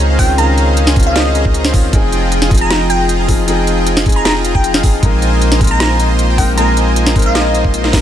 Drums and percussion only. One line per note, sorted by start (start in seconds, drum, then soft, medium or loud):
0.19 kick medium
0.19 open hi-hat medium
0.38 closed hi-hat medium
0.58 closed hi-hat medium
0.77 closed hi-hat medium
0.87 snare medium
0.96 kick loud
0.96 closed hi-hat soft
1.00 closed hi-hat medium
1.03 closed hi-hat medium
1.16 snare loud
1.16 closed hi-hat medium
1.35 closed hi-hat medium
1.45 kick medium
1.54 closed hi-hat medium
1.65 snare medium
1.74 kick loud
1.74 open hi-hat loud
1.93 kick loud
1.93 closed hi-hat medium
2.12 closed hi-hat medium
2.32 closed hi-hat medium
2.42 snare medium
2.51 kick loud
2.51 closed hi-hat soft
2.54 closed hi-hat medium
2.58 closed hi-hat medium
2.70 snare loud
2.70 closed hi-hat medium
2.90 closed hi-hat medium
3.09 closed hi-hat medium
3.29 kick medium
3.29 open hi-hat medium
3.48 closed hi-hat medium
3.67 closed hi-hat medium
3.87 closed hi-hat medium
3.97 snare medium
4.06 kick loud
4.06 closed hi-hat soft
4.09 closed hi-hat medium
4.12 closed hi-hat medium
4.25 snare loud
4.25 closed hi-hat medium
4.45 closed hi-hat medium
4.55 kick medium
4.64 closed hi-hat medium
4.74 snare medium
4.83 kick loud
4.83 open hi-hat loud
5.03 kick loud
5.03 closed hi-hat medium
5.22 closed hi-hat medium
5.42 closed hi-hat medium
5.52 snare medium
5.61 kick loud
5.61 closed hi-hat soft
5.64 closed hi-hat medium
5.67 closed hi-hat medium
5.80 snare loud
5.80 closed hi-hat medium
6.00 closed hi-hat medium
6.19 closed hi-hat medium
6.38 kick medium
6.38 open hi-hat loud
6.58 closed hi-hat medium
6.77 closed hi-hat medium
6.96 closed hi-hat medium
7.07 snare medium
7.16 kick loud
7.16 closed hi-hat soft
7.19 closed hi-hat medium
7.22 closed hi-hat medium
7.35 snare loud
7.35 closed hi-hat medium
7.55 closed hi-hat medium
7.65 kick medium
7.74 closed hi-hat medium
7.84 snare medium
7.93 kick loud
7.93 snare medium
7.93 open hi-hat loud